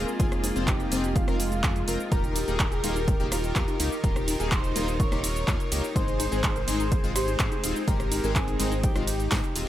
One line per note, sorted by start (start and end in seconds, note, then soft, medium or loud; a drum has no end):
0.00 2.08 G#3 medium
0.00 2.08 A#3 medium
0.00 9.68 D#4 medium
0.00 0.10 F4 medium
0.00 5.92 F4 medium
0.00 0.10 G#4 loud
0.00 9.68 D#5 medium
0.00 0.10 G#5 medium
0.08 0.15 C4 medium
0.08 shaker soft
0.19 0.52 F1 loud
0.19 0.27 C4 loud
0.19 0.26 C4 medium
0.19 0.63 F4 medium
0.19 0.26 F4 medium
0.19 0.63 G#4 medium
0.19 0.26 G#4 medium
0.19 0.63 G#5 medium
0.19 kick loud
0.19 closed hi-hat medium
0.19 shaker soft
0.32 0.39 C4 medium
0.32 cross-stick medium
0.32 closed hi-hat soft
0.32 shaker soft
0.43 0.51 C4 medium
0.43 open hi-hat loud
0.43 high conga medium
0.43 shaker medium
0.56 0.88 F1 medium
0.56 0.63 C4 loud
0.56 0.66 C4 medium
0.56 0.66 F4 medium
0.56 0.66 C5 medium
0.56 closed hi-hat soft
0.56 shaker soft
0.68 0.75 C4 medium
0.68 1.11 D#4 medium
0.68 1.11 G4 medium
0.68 1.11 G5 medium
0.68 kick loud
0.68 clap loud
0.68 closed hi-hat medium
0.68 shaker soft
0.80 0.87 C4 medium
0.80 closed hi-hat soft
0.80 shaker soft
0.92 1.24 F1 medium
0.92 2.02 C4 medium
0.92 1.02 C4 loud
0.92 1.02 F4 medium
0.92 1.02 G#4 loud
0.92 open hi-hat loud
0.92 low conga loud
0.92 shaker medium
1.04 closed hi-hat soft
1.04 high conga medium
1.04 shaker soft
1.16 2.02 G#3 medium
1.16 2.02 F4 loud
1.16 2.02 F5 medium
1.16 kick loud
1.16 closed hi-hat medium
1.16 shaker soft
1.28 1.65 F1 loud
1.28 1.34 C4 loud
1.28 1.34 F4 medium
1.28 1.34 A#4 loud
1.28 cross-stick medium
1.28 closed hi-hat soft
1.28 high conga medium
1.28 shaker soft
1.40 open hi-hat loud
1.40 shaker medium
1.52 closed hi-hat soft
1.52 shaker soft
1.64 1.84 F2 medium
1.64 1.70 C4 medium
1.64 1.70 F4 medium
1.64 1.70 G#4 loud
1.64 kick loud
1.64 clap loud
1.64 closed hi-hat medium
1.64 shaker soft
1.76 closed hi-hat soft
1.76 shaker soft
1.88 1.98 F1 loud
1.88 1.98 C4 medium
1.88 1.98 F4 medium
1.88 1.98 A#4 medium
1.88 open hi-hat loud
1.88 shaker medium
2.00 shaker soft
2.12 2.45 D#1 loud
2.12 5.92 D#3 medium
2.12 2.18 A#3 medium
2.12 9.68 D#4 medium
2.12 2.18 D#4 medium
2.12 2.18 F4 medium
2.12 2.55 G4 medium
2.12 2.19 A#4 loud
2.12 4.02 A#4 medium
2.12 2.55 A#4 loud
2.12 2.55 A#5 loud
2.12 kick loud
2.12 closed hi-hat medium
2.12 shaker soft
2.24 2.31 D#4 medium
2.24 closed hi-hat soft
2.24 shaker soft
2.36 2.43 D#4 medium
2.36 open hi-hat loud
2.36 ride medium
2.36 high conga medium
2.36 shaker medium
2.48 2.80 D#1 medium
2.48 2.58 A#3 medium
2.48 2.58 D#4 medium
2.48 2.58 G#4 medium
2.48 2.55 A#4 medium
2.48 closed hi-hat soft
2.48 shaker soft
2.60 3.22 G4 medium
2.60 3.22 A#4 loud
2.60 3.22 A#5 loud
2.60 kick loud
2.60 clap loud
2.60 closed hi-hat medium
2.60 high conga medium
2.60 shaker soft
2.72 2.79 G#4 medium
2.72 closed hi-hat soft
2.72 shaker soft
2.84 3.17 D#1 medium
2.84 2.94 A#3 loud
2.84 2.91 D#4 medium
2.84 2.94 D#4 medium
2.84 2.94 F4 loud
2.84 open hi-hat loud
2.84 ride medium
2.84 low conga medium
2.84 shaker medium
2.96 3.03 G#4 loud
2.96 closed hi-hat soft
2.96 high conga medium
2.96 shaker soft
3.08 3.15 D#4 medium
3.08 kick loud
3.08 closed hi-hat medium
3.08 shaker soft
3.20 3.52 D#1 loud
3.20 3.26 A#3 loud
3.20 3.26 D#4 medium
3.20 3.27 D#4 medium
3.20 3.26 G4 loud
3.20 closed hi-hat soft
3.20 shaker soft
3.32 3.39 F4 loud
3.32 3.94 G4 medium
3.32 3.94 A#4 loud
3.32 3.94 A#5 medium
3.32 cross-stick medium
3.32 open hi-hat loud
3.32 ride medium
3.32 shaker medium
3.44 3.51 D#4 medium
3.44 closed hi-hat soft
3.44 shaker soft
3.56 3.66 D#2 medium
3.56 3.62 A#3 medium
3.56 3.62 D#4 medium
3.56 3.63 D#4 medium
3.56 3.62 F4 loud
3.56 kick loud
3.56 clap loud
3.56 closed hi-hat medium
3.56 shaker soft
3.68 3.75 F4 loud
3.68 closed hi-hat soft
3.68 high conga medium
3.68 shaker soft
3.80 3.90 C#2 medium
3.80 3.90 A#3 medium
3.80 3.90 D#4 medium
3.80 3.87 D#4 medium
3.80 3.90 G4 medium
3.80 open hi-hat loud
3.80 ride medium
3.80 shaker medium
3.92 3.99 D#4 medium
3.92 shaker soft
4.04 4.37 D#1 loud
4.04 5.94 C3 medium
4.04 4.10 A#3 medium
4.04 4.10 D#4 medium
4.04 4.10 F4 medium
4.04 4.11 G4 loud
4.04 4.47 G4 medium
4.04 4.47 A#4 medium
4.04 4.47 A#5 medium
4.04 kick loud
4.04 closed hi-hat medium
4.04 shaker soft
4.16 4.23 D#4 medium
4.16 cross-stick medium
4.16 closed hi-hat soft
4.16 shaker soft
4.28 4.35 D#4 medium
4.28 open hi-hat loud
4.28 ride medium
4.28 high conga medium
4.28 shaker medium
4.40 4.72 D#1 medium
4.40 4.50 A#3 medium
4.40 4.50 D#4 medium
4.40 4.47 G#4 loud
4.40 4.50 G#4 medium
4.40 closed hi-hat soft
4.40 shaker soft
4.52 4.95 D#4 medium
4.52 4.59 D#4 medium
4.52 4.95 C5 medium
4.52 4.95 C6 medium
4.52 kick loud
4.52 clap loud
4.52 closed hi-hat medium
4.52 shaker soft
4.64 4.71 D#4 medium
4.64 closed hi-hat soft
4.64 shaker soft
4.76 5.09 D#1 medium
4.76 4.86 A#3 loud
4.76 4.86 D#4 medium
4.76 4.86 F4 loud
4.76 5.86 A#4 loud
4.76 open hi-hat loud
4.76 ride medium
4.76 low conga medium
4.76 shaker medium
4.88 closed hi-hat soft
4.88 high conga medium
4.88 shaker soft
5.00 5.86 A#4 medium
5.00 5.86 C#5 loud
5.00 5.86 C#6 medium
5.00 kick loud
5.00 closed hi-hat medium
5.00 shaker soft
5.12 5.44 D#1 loud
5.12 5.18 A#3 loud
5.12 5.18 D#4 medium
5.12 5.18 G4 loud
5.12 cross-stick medium
5.12 closed hi-hat soft
5.12 high conga medium
5.12 shaker soft
5.24 open hi-hat loud
5.24 ride medium
5.24 shaker medium
5.36 closed hi-hat soft
5.36 shaker soft
5.48 5.58 D#2 medium
5.48 5.54 A#3 medium
5.48 5.54 D#4 medium
5.48 5.54 F4 loud
5.48 kick loud
5.48 clap loud
5.48 closed hi-hat medium
5.48 shaker soft
5.60 closed hi-hat soft
5.60 shaker soft
5.72 5.82 C#2 medium
5.72 5.82 A#3 medium
5.72 5.82 D#4 medium
5.72 5.82 G4 medium
5.72 open hi-hat loud
5.72 ride medium
5.72 shaker medium
5.84 shaker soft
5.96 6.29 G#1 loud
5.96 9.68 G#3 medium
5.96 6.02 G#3 medium
5.96 9.68 C4 medium
5.96 6.02 C4 medium
5.96 6.02 D#4 medium
5.96 6.39 G#4 medium
5.96 6.39 C5 loud
5.96 6.03 C5 loud
5.96 6.39 C6 loud
5.96 kick loud
5.96 closed hi-hat loud
5.96 shaker soft
6.08 6.15 D#4 medium
6.08 closed hi-hat soft
6.08 shaker soft
6.20 6.27 D#4 medium
6.20 open hi-hat loud
6.20 ride medium
6.20 high conga medium
6.20 shaker medium
6.32 6.65 G#1 medium
6.32 6.42 G#3 medium
6.32 6.42 C4 medium
6.32 6.42 G#4 medium
6.32 6.39 C5 medium
6.32 closed hi-hat soft
6.32 shaker soft
6.43 6.51 D#4 medium
6.43 7.06 G#4 medium
6.43 7.06 C5 loud
6.43 7.06 C6 loud
6.43 kick loud
6.43 clap loud
6.43 closed hi-hat loud
6.43 high conga medium
6.43 shaker soft
6.56 6.63 A#4 medium
6.56 closed hi-hat soft
6.56 shaker soft
6.68 7.01 G#1 medium
6.68 6.78 G#3 loud
6.68 6.78 C4 medium
6.68 6.75 D#4 medium
6.68 6.78 D#4 loud
6.68 open hi-hat loud
6.68 ride medium
6.68 low conga medium
6.68 shaker medium
6.80 6.87 A#4 loud
6.80 closed hi-hat soft
6.80 high conga medium
6.80 shaker soft
6.92 6.99 D#4 medium
6.92 kick loud
6.92 closed hi-hat loud
6.92 shaker soft
7.04 7.36 G#1 loud
7.04 7.10 G#3 loud
7.04 7.10 C4 medium
7.04 7.11 D#4 medium
7.04 7.10 F4 loud
7.04 closed hi-hat soft
7.04 shaker soft
7.15 7.23 G4 loud
7.15 7.78 G#4 medium
7.15 7.78 C5 loud
7.15 7.78 C6 medium
7.15 cross-stick medium
7.15 open hi-hat loud
7.15 ride medium
7.15 shaker medium
7.28 7.35 D#4 medium
7.28 closed hi-hat soft
7.28 shaker soft
7.39 7.50 G#2 medium
7.39 7.46 G#3 medium
7.39 7.46 C4 medium
7.39 7.46 D#4 loud
7.39 7.47 D#4 medium
7.39 kick loud
7.39 clap loud
7.39 closed hi-hat loud
7.39 shaker soft
7.52 7.59 G4 medium
7.52 closed hi-hat soft
7.52 high conga medium
7.52 shaker soft
7.64 7.74 D#1 medium
7.64 7.74 G#3 medium
7.64 7.74 C4 medium
7.64 7.71 D#4 medium
7.64 7.74 F4 medium
7.64 open hi-hat loud
7.64 ride medium
7.64 shaker medium
7.76 7.83 D#4 medium
7.76 shaker soft
7.87 8.21 G#1 loud
7.87 7.94 G#3 medium
7.87 7.94 C4 medium
7.87 7.94 D#4 medium
7.87 8.31 G4 medium
7.87 7.95 G#4 loud
7.87 8.31 A#4 medium
7.87 8.31 A#5 medium
7.87 kick loud
7.87 closed hi-hat loud
7.87 shaker soft
8.00 8.07 D#4 medium
8.00 cross-stick medium
8.00 closed hi-hat soft
8.00 shaker soft
8.12 8.19 D#4 medium
8.12 open hi-hat loud
8.12 ride medium
8.12 high conga loud
8.12 shaker medium
8.24 8.56 G#1 medium
8.24 8.34 G#3 medium
8.24 8.34 C4 medium
8.24 8.34 G#4 medium
8.24 8.31 A#4 medium
8.24 closed hi-hat soft
8.24 shaker soft
8.35 8.79 C4 medium
8.35 8.79 G#4 medium
8.35 8.79 G#5 medium
8.35 kick loud
8.35 clap loud
8.35 closed hi-hat loud
8.35 high conga medium
8.35 shaker soft
8.48 8.55 D#4 medium
8.48 closed hi-hat soft
8.48 shaker soft
8.60 8.93 G#1 medium
8.60 8.70 G#3 loud
8.60 8.70 C4 medium
8.60 8.70 D#4 loud
8.60 9.68 C5 loud
8.60 open hi-hat loud
8.60 ride medium
8.60 low conga medium
8.60 shaker medium
8.72 closed hi-hat soft
8.72 high conga medium
8.72 shaker soft
8.83 9.68 D#4 medium
8.83 9.68 G4 loud
8.83 9.68 G5 loud
8.83 kick loud
8.83 closed hi-hat loud
8.83 shaker soft
8.96 9.28 G#1 loud
8.96 9.02 G#3 loud
8.96 9.02 C4 medium
8.96 9.02 F4 loud
8.96 cross-stick medium
8.96 closed hi-hat soft
8.96 high conga loud
8.96 shaker soft
9.07 open hi-hat loud
9.07 ride medium
9.07 shaker medium
9.20 closed hi-hat soft
9.20 shaker soft
9.31 9.42 G#2 medium
9.31 9.38 G#3 medium
9.31 9.38 C4 medium
9.31 9.38 D#4 loud
9.31 kick loud
9.31 snare loud
9.31 clap loud
9.31 closed hi-hat loud
9.31 shaker soft
9.44 closed hi-hat soft
9.44 shaker soft
9.56 9.66 D#1 medium
9.56 9.66 G#3 medium
9.56 9.66 C4 medium
9.56 9.66 F4 medium
9.56 open hi-hat loud
9.56 ride medium
9.56 shaker medium